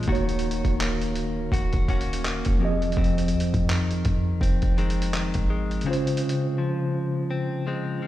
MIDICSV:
0, 0, Header, 1, 5, 480
1, 0, Start_track
1, 0, Tempo, 722892
1, 52, Time_signature, 4, 2, 24, 8
1, 5361, End_track
2, 0, Start_track
2, 0, Title_t, "Tine electric piano"
2, 0, Program_c, 0, 4
2, 0, Control_c, 0, 64, 127
2, 39, Note_on_c, 0, 51, 70
2, 54, Note_on_c, 0, 58, 65
2, 61, Control_c, 0, 64, 0
2, 68, Note_on_c, 0, 66, 69
2, 82, Note_on_c, 0, 73, 80
2, 159, Control_c, 0, 64, 127
2, 1699, Note_off_c, 0, 51, 0
2, 1706, Note_off_c, 0, 58, 0
2, 1713, Note_off_c, 0, 66, 0
2, 1715, Note_on_c, 0, 53, 68
2, 1721, Note_off_c, 0, 73, 0
2, 1730, Note_on_c, 0, 60, 66
2, 1739, Control_c, 0, 64, 0
2, 1744, Note_on_c, 0, 67, 49
2, 1758, Note_on_c, 0, 75, 82
2, 1787, Note_on_c, 0, 68, 65
2, 1788, Note_off_c, 0, 67, 0
2, 1849, Control_c, 0, 64, 127
2, 3617, Note_off_c, 0, 53, 0
2, 3624, Note_off_c, 0, 60, 0
2, 3638, Note_off_c, 0, 75, 0
2, 3653, Note_off_c, 0, 68, 0
2, 3877, Note_on_c, 0, 49, 73
2, 3892, Note_on_c, 0, 61, 66
2, 3899, Control_c, 0, 64, 0
2, 3907, Note_on_c, 0, 65, 68
2, 3921, Note_on_c, 0, 72, 78
2, 4001, Control_c, 0, 64, 127
2, 5361, Note_off_c, 0, 49, 0
2, 5361, Note_off_c, 0, 61, 0
2, 5361, Note_off_c, 0, 65, 0
2, 5361, Note_off_c, 0, 72, 0
2, 5361, End_track
3, 0, Start_track
3, 0, Title_t, "Clean electric guitar"
3, 0, Program_c, 1, 27
3, 0, Note_on_c, 1, 56, 61
3, 0, Note_on_c, 1, 61, 70
3, 55, Note_on_c, 1, 51, 82
3, 58, Note_on_c, 1, 66, 72
3, 109, Note_off_c, 1, 56, 0
3, 535, Note_on_c, 1, 58, 58
3, 1005, Note_off_c, 1, 66, 0
3, 1013, Note_on_c, 1, 66, 68
3, 1245, Note_off_c, 1, 58, 0
3, 1253, Note_off_c, 1, 66, 0
3, 1253, Note_on_c, 1, 58, 60
3, 1254, Note_off_c, 1, 61, 0
3, 1257, Note_on_c, 1, 61, 65
3, 1261, Note_on_c, 1, 66, 70
3, 1485, Note_off_c, 1, 58, 0
3, 1493, Note_on_c, 1, 58, 59
3, 1733, Note_on_c, 1, 41, 78
3, 1788, Note_off_c, 1, 58, 0
3, 1790, Note_off_c, 1, 61, 0
3, 1792, Note_off_c, 1, 66, 0
3, 1967, Note_off_c, 1, 41, 0
3, 1975, Note_on_c, 1, 41, 81
3, 1979, Note_on_c, 1, 60, 67
3, 1995, Note_off_c, 1, 51, 0
3, 2453, Note_on_c, 1, 51, 62
3, 2929, Note_off_c, 1, 60, 0
3, 2932, Note_on_c, 1, 60, 69
3, 3164, Note_off_c, 1, 51, 0
3, 3172, Note_on_c, 1, 51, 61
3, 3175, Note_on_c, 1, 56, 59
3, 3177, Note_off_c, 1, 60, 0
3, 3180, Note_on_c, 1, 60, 68
3, 3405, Note_off_c, 1, 51, 0
3, 3413, Note_on_c, 1, 51, 61
3, 3649, Note_off_c, 1, 56, 0
3, 3652, Note_on_c, 1, 56, 62
3, 3891, Note_on_c, 1, 49, 84
3, 3892, Note_off_c, 1, 60, 0
3, 3893, Note_off_c, 1, 41, 0
3, 3895, Note_on_c, 1, 60, 73
3, 3948, Note_off_c, 1, 51, 0
3, 4371, Note_on_c, 1, 53, 60
3, 4843, Note_off_c, 1, 60, 0
3, 4851, Note_on_c, 1, 60, 67
3, 5088, Note_off_c, 1, 53, 0
3, 5091, Note_off_c, 1, 60, 0
3, 5091, Note_on_c, 1, 53, 62
3, 5092, Note_off_c, 1, 56, 0
3, 5095, Note_on_c, 1, 56, 61
3, 5099, Note_on_c, 1, 60, 68
3, 5326, Note_off_c, 1, 53, 0
3, 5329, Note_on_c, 1, 53, 62
3, 5361, Note_off_c, 1, 49, 0
3, 5361, Note_off_c, 1, 53, 0
3, 5361, Note_off_c, 1, 56, 0
3, 5361, Note_off_c, 1, 60, 0
3, 5361, End_track
4, 0, Start_track
4, 0, Title_t, "808-style bass"
4, 0, Program_c, 2, 38
4, 53, Note_on_c, 2, 27, 114
4, 416, Note_off_c, 2, 27, 0
4, 433, Note_on_c, 2, 27, 93
4, 989, Note_off_c, 2, 27, 0
4, 1010, Note_on_c, 2, 27, 114
4, 1605, Note_off_c, 2, 27, 0
4, 1636, Note_on_c, 2, 29, 98
4, 1961, Note_off_c, 2, 29, 0
4, 1974, Note_on_c, 2, 29, 107
4, 2216, Note_on_c, 2, 41, 97
4, 2226, Note_off_c, 2, 29, 0
4, 2346, Note_off_c, 2, 41, 0
4, 2352, Note_on_c, 2, 41, 96
4, 2679, Note_off_c, 2, 41, 0
4, 2694, Note_on_c, 2, 41, 100
4, 2923, Note_off_c, 2, 41, 0
4, 2930, Note_on_c, 2, 29, 108
4, 3064, Note_off_c, 2, 29, 0
4, 3074, Note_on_c, 2, 29, 93
4, 3534, Note_off_c, 2, 29, 0
4, 3556, Note_on_c, 2, 32, 98
4, 3881, Note_off_c, 2, 32, 0
4, 5361, End_track
5, 0, Start_track
5, 0, Title_t, "Drums"
5, 18, Note_on_c, 9, 42, 44
5, 51, Note_on_c, 9, 36, 100
5, 85, Note_off_c, 9, 42, 0
5, 99, Note_on_c, 9, 42, 48
5, 118, Note_off_c, 9, 36, 0
5, 165, Note_off_c, 9, 42, 0
5, 191, Note_on_c, 9, 42, 56
5, 257, Note_off_c, 9, 42, 0
5, 258, Note_on_c, 9, 42, 59
5, 325, Note_off_c, 9, 42, 0
5, 339, Note_on_c, 9, 42, 63
5, 406, Note_off_c, 9, 42, 0
5, 430, Note_on_c, 9, 36, 84
5, 431, Note_on_c, 9, 42, 49
5, 496, Note_off_c, 9, 36, 0
5, 497, Note_off_c, 9, 42, 0
5, 532, Note_on_c, 9, 42, 69
5, 536, Note_on_c, 9, 39, 109
5, 599, Note_off_c, 9, 42, 0
5, 602, Note_off_c, 9, 39, 0
5, 674, Note_on_c, 9, 42, 47
5, 740, Note_off_c, 9, 42, 0
5, 767, Note_on_c, 9, 42, 59
5, 833, Note_off_c, 9, 42, 0
5, 1008, Note_on_c, 9, 36, 85
5, 1020, Note_on_c, 9, 42, 77
5, 1074, Note_off_c, 9, 36, 0
5, 1086, Note_off_c, 9, 42, 0
5, 1146, Note_on_c, 9, 42, 43
5, 1153, Note_on_c, 9, 36, 87
5, 1213, Note_off_c, 9, 42, 0
5, 1219, Note_off_c, 9, 36, 0
5, 1252, Note_on_c, 9, 36, 86
5, 1253, Note_on_c, 9, 42, 43
5, 1318, Note_off_c, 9, 36, 0
5, 1319, Note_off_c, 9, 42, 0
5, 1333, Note_on_c, 9, 42, 59
5, 1400, Note_off_c, 9, 42, 0
5, 1415, Note_on_c, 9, 42, 70
5, 1481, Note_off_c, 9, 42, 0
5, 1493, Note_on_c, 9, 42, 67
5, 1496, Note_on_c, 9, 39, 91
5, 1559, Note_off_c, 9, 42, 0
5, 1562, Note_off_c, 9, 39, 0
5, 1625, Note_on_c, 9, 42, 53
5, 1635, Note_on_c, 9, 36, 85
5, 1692, Note_off_c, 9, 42, 0
5, 1701, Note_off_c, 9, 36, 0
5, 1873, Note_on_c, 9, 42, 38
5, 1939, Note_off_c, 9, 42, 0
5, 1940, Note_on_c, 9, 42, 45
5, 1972, Note_on_c, 9, 36, 101
5, 2006, Note_off_c, 9, 42, 0
5, 2019, Note_on_c, 9, 42, 52
5, 2038, Note_off_c, 9, 36, 0
5, 2086, Note_off_c, 9, 42, 0
5, 2112, Note_on_c, 9, 42, 56
5, 2179, Note_off_c, 9, 42, 0
5, 2179, Note_on_c, 9, 42, 63
5, 2246, Note_off_c, 9, 42, 0
5, 2258, Note_on_c, 9, 42, 61
5, 2324, Note_off_c, 9, 42, 0
5, 2350, Note_on_c, 9, 36, 86
5, 2350, Note_on_c, 9, 42, 50
5, 2416, Note_off_c, 9, 36, 0
5, 2417, Note_off_c, 9, 42, 0
5, 2452, Note_on_c, 9, 42, 69
5, 2455, Note_on_c, 9, 39, 110
5, 2518, Note_off_c, 9, 42, 0
5, 2522, Note_off_c, 9, 39, 0
5, 2594, Note_on_c, 9, 42, 47
5, 2660, Note_off_c, 9, 42, 0
5, 2687, Note_on_c, 9, 42, 64
5, 2692, Note_on_c, 9, 36, 96
5, 2754, Note_off_c, 9, 42, 0
5, 2759, Note_off_c, 9, 36, 0
5, 2928, Note_on_c, 9, 36, 86
5, 2941, Note_on_c, 9, 42, 79
5, 2994, Note_off_c, 9, 36, 0
5, 3007, Note_off_c, 9, 42, 0
5, 3067, Note_on_c, 9, 42, 44
5, 3073, Note_on_c, 9, 36, 83
5, 3134, Note_off_c, 9, 42, 0
5, 3139, Note_off_c, 9, 36, 0
5, 3173, Note_on_c, 9, 42, 40
5, 3240, Note_off_c, 9, 42, 0
5, 3254, Note_on_c, 9, 42, 54
5, 3320, Note_off_c, 9, 42, 0
5, 3332, Note_on_c, 9, 42, 72
5, 3399, Note_off_c, 9, 42, 0
5, 3410, Note_on_c, 9, 42, 68
5, 3413, Note_on_c, 9, 39, 90
5, 3477, Note_off_c, 9, 42, 0
5, 3480, Note_off_c, 9, 39, 0
5, 3545, Note_on_c, 9, 42, 50
5, 3554, Note_on_c, 9, 36, 85
5, 3611, Note_off_c, 9, 42, 0
5, 3620, Note_off_c, 9, 36, 0
5, 3792, Note_on_c, 9, 42, 38
5, 3858, Note_off_c, 9, 42, 0
5, 3859, Note_on_c, 9, 42, 43
5, 3925, Note_off_c, 9, 42, 0
5, 3937, Note_on_c, 9, 42, 51
5, 4004, Note_off_c, 9, 42, 0
5, 4031, Note_on_c, 9, 42, 57
5, 4098, Note_off_c, 9, 42, 0
5, 4098, Note_on_c, 9, 42, 63
5, 4164, Note_off_c, 9, 42, 0
5, 4178, Note_on_c, 9, 42, 64
5, 4244, Note_off_c, 9, 42, 0
5, 5361, End_track
0, 0, End_of_file